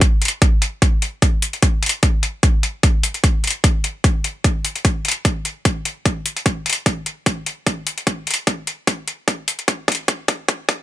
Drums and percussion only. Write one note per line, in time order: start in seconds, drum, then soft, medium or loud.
0.01 kick medium
0.01 closed hi-hat medium
0.22 closed hi-hat soft
0.25 closed hi-hat medium
0.28 closed hi-hat medium
0.42 kick medium
0.42 closed hi-hat medium
0.62 closed hi-hat medium
0.82 kick medium
0.82 closed hi-hat medium
1.02 closed hi-hat soft
1.22 kick medium
1.22 closed hi-hat medium
1.42 open hi-hat medium
1.53 closed hi-hat soft
1.62 kick medium
1.62 closed hi-hat medium
1.83 closed hi-hat soft
1.86 closed hi-hat medium
1.89 closed hi-hat medium
2.03 kick medium
2.03 closed hi-hat medium
2.23 closed hi-hat medium
2.43 kick medium
2.43 closed hi-hat medium
2.63 closed hi-hat soft
2.83 kick medium
2.83 closed hi-hat medium
3.03 open hi-hat medium
3.14 closed hi-hat soft
3.24 kick medium
3.24 closed hi-hat medium
3.44 closed hi-hat soft
3.47 closed hi-hat medium
3.50 closed hi-hat medium
3.64 kick medium
3.64 closed hi-hat medium
3.84 closed hi-hat medium
4.04 kick loud
4.04 closed hi-hat medium
4.24 closed hi-hat soft
4.44 kick medium
4.44 closed hi-hat medium
4.65 open hi-hat medium
4.76 closed hi-hat soft
4.85 kick medium
4.85 closed hi-hat medium
5.05 closed hi-hat soft
5.08 closed hi-hat medium
5.12 closed hi-hat medium
5.25 kick medium
5.25 closed hi-hat medium
5.45 closed hi-hat medium
5.65 kick loud
5.65 closed hi-hat medium
5.85 closed hi-hat soft
6.05 kick loud
6.05 closed hi-hat medium
6.26 open hi-hat medium
6.37 closed hi-hat soft
6.46 kick loud
6.46 closed hi-hat medium
6.66 closed hi-hat soft
6.70 closed hi-hat medium
6.73 closed hi-hat medium
6.86 kick loud
6.86 closed hi-hat medium
7.06 closed hi-hat medium
7.26 kick loud
7.26 closed hi-hat medium
7.46 closed hi-hat soft
7.67 kick loud
7.67 closed hi-hat medium
7.87 open hi-hat medium
7.98 closed hi-hat soft
8.07 kick loud
8.07 closed hi-hat medium
8.27 closed hi-hat soft
8.31 closed hi-hat medium
8.34 closed hi-hat medium
8.47 kick loud
8.47 closed hi-hat medium
8.67 closed hi-hat medium
8.87 kick loud
8.87 closed hi-hat medium
9.08 closed hi-hat soft
9.28 kick loud
9.28 closed hi-hat medium
9.48 open hi-hat medium
9.59 closed hi-hat soft
9.68 kick loud
9.68 closed hi-hat medium
9.88 kick loud
9.88 closed hi-hat soft
9.92 closed hi-hat medium
9.95 closed hi-hat medium
10.08 kick loud
10.08 closed hi-hat medium
10.28 kick loud
10.28 closed hi-hat medium
10.48 kick loud
10.48 closed hi-hat medium
10.69 kick loud
10.69 closed hi-hat soft